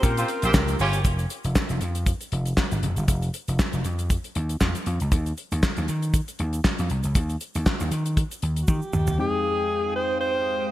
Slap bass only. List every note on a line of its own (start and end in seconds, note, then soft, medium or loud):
0.03 0.23 A#2 loud
0.43 0.52 A#1 medium
0.54 0.74 C#2 loud
0.80 0.99 G1 medium
1.05 1.25 F1 loud
1.44 1.53 F1 medium
1.70 1.79 F1 medium
1.81 2.12 F2 medium
2.32 2.52 F1 medium
2.72 2.80 G#1 medium
2.83 2.94 F1 medium
2.97 3.06 G1 medium
3.08 3.28 F1 medium
3.48 3.57 F1 medium
3.73 3.82 F1 medium
3.85 4.15 F2 medium
4.36 4.55 D#2 medium
4.61 4.72 F2 medium
4.87 4.97 F2 medium
5.01 5.10 C#2 medium
5.12 5.31 D#2 medium
5.52 5.60 D#2 medium
5.78 5.86 D#2 medium
5.89 6.19 D#3 medium
6.40 6.59 D#2 medium
6.79 6.88 F2 medium
6.90 7.01 C2 medium
7.05 7.13 C#2 medium
7.15 7.35 D#2 loud
7.55 7.64 D#2 medium
7.80 7.89 D#2 medium
7.91 8.22 D#3 medium
8.43 8.62 D#2 medium
8.68 8.79 D#3 medium
8.93 9.04 D#2 medium
9.08 9.16 D#2 medium